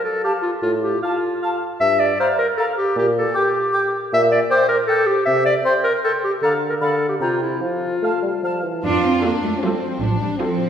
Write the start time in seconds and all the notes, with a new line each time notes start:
0.04 A4
0.24 G4 F5 A5
0.42 F4
0.62 A2 F4
0.81 G4
1.02 F4 F5 A5
1.42 F5 A5
1.80 G2 E5
2.00 D5
2.20 C5 F5 A#5
2.38 A#4
2.57 A4 F5 A#5
2.78 G4
2.96 A#2 G4
3.18 A4
3.35 G4 G5 D6
3.73 G5 D6
4.12 A#2 E5
4.32 D5
4.50 C5 G5 D6
4.69 A#4
4.87 A4 G5 D6
5.06 G4
5.25 C3 E5
5.45 D5
5.65 C5 G5 C6
5.84 A#4
6.04 A4 G5 C6
6.24 G4
6.42 D3 A4 F5 A#5
6.70 A#4
6.81 D3 A4 F5 B5
7.09 G4
7.20 C3 F4 G5 A#5
7.42 E4
7.61 F3 F4
8.02 A3 F5 A5
8.22 G3
8.43 F3 F5 A5
8.64 E3
8.84 F2 D4 F4
9.05 C4
9.24 A#3 D4 F4 A4 C5
9.44 A3
9.63 G3 C4 F4 A4 C5
9.83 F3
10.02 A1 F3 D4
10.21 G3
10.40 F3 C4 F4 A4 C5